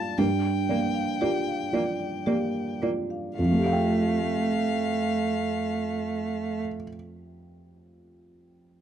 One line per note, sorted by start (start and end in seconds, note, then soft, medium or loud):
0.00 0.14 G2 medium
0.00 0.20 A#3 soft
0.00 0.20 F4 soft
0.00 0.20 D5 soft
0.00 0.20 A5 medium
0.18 3.35 G2 soft
0.18 0.27 A#3 soft
0.18 0.33 G4 soft
0.18 2.83 G5 medium
0.69 1.17 A#3 soft
0.69 0.78 A#3 soft
0.69 1.17 D5 soft
0.69 0.84 F5 soft
0.95 1.10 F5 soft
1.21 1.30 A#3 soft
1.21 1.70 F4 soft
1.21 1.37 G4 soft
1.21 1.70 D5 soft
1.48 1.63 F5 soft
1.73 1.82 A#3 soft
1.73 2.23 F4 soft
1.73 1.89 D5 soft
1.73 2.23 D5 soft
2.00 2.16 D5 soft
2.26 2.78 A#3 soft
2.26 2.35 A#3 soft
2.26 2.43 G4 soft
2.26 2.78 D5 soft
2.82 2.90 A#3 soft
2.82 3.35 F4 soft
2.82 2.99 D5 soft
2.82 3.35 D5 soft
3.10 3.27 F5 soft
3.38 6.61 F2 soft
3.38 6.61 A3 soft
3.38 6.61 F5 medium
3.45 6.68 F3 soft
3.52 6.75 A3 soft
3.59 6.81 G4 soft
3.66 6.89 F5 soft
3.73 6.96 G5 soft